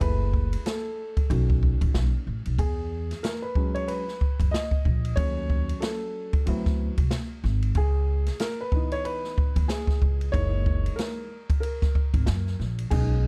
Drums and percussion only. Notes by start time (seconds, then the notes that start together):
0.01 kick, ride
0.33 kick
0.53 ride
0.66 snare, hi-hat pedal, ride
1.17 kick, ride
1.31 ride
1.50 kick
1.63 kick
1.81 kick, ride
1.94 snare, hi-hat pedal, ride
2.46 ride
2.59 kick, ride
3.11 snare, ride
3.24 snare, hi-hat pedal, ride
3.55 kick
3.75 ride
3.88 ride
4.08 snare
4.21 kick
4.40 kick, ride
4.54 snare, hi-hat pedal, ride
4.71 kick
4.85 kick
5.05 ride
5.17 kick, ride
5.50 kick
5.69 ride
5.82 snare, hi-hat pedal, ride
6.33 kick, ride
6.47 ride
6.65 kick, snare
6.98 kick, ride
7.11 snare, hi-hat pedal, ride
7.44 snare
7.62 ride
7.75 kick, ride
8.27 snare, ride
8.40 snare, hi-hat pedal, ride
8.72 kick
8.92 ride
9.05 ride
9.24 snare
9.38 kick
9.56 kick, ride
9.69 snare, hi-hat pedal, ride
9.87 kick, snare
10.02 kick
10.21 ride
10.34 kick, ride
10.66 kick
10.86 ride
10.99 snare, hi-hat pedal, ride
11.50 kick, ride
11.63 ride
11.82 kick, snare
11.95 kick
12.14 kick, ride
12.26 snare, hi-hat pedal, ride
12.47 snare
12.60 snare
12.79 ride
12.91 kick, crash